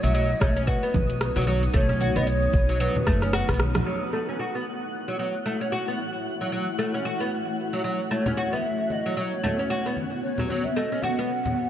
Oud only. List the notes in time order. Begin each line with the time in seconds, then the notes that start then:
0.03 F#3
0.14 F#3
0.41 A3
0.56 C#4
0.67 F#4
0.83 B3
1.36 F#3
1.47 F#3
1.74 A3
1.89 C#4
2.01 F#4
2.16 B3
2.69 F#3
2.80 F#3
3.07 A3
3.23 C#4
3.33 F#4
3.49 B3
3.86 F#3
4.13 A3
4.29 C#4
4.40 F#4
4.55 B3
5.08 F#3
5.19 F#3
5.46 A3
5.61 C#4
5.72 F#4
5.88 B3
6.41 F#3
6.52 F#3
6.79 A3
6.94 C#4
7.05 F#4
7.20 B3
7.73 F#3
7.84 F#3
8.11 A3
8.26 C#4
8.37 F#4
8.53 B3
9.06 F#3
9.17 F#3
9.44 A3
9.59 C#4
9.70 F#4
9.86 B3
10.39 F#3
10.50 F#3
10.76 A3
10.92 C#4
11.03 F#4
11.19 B3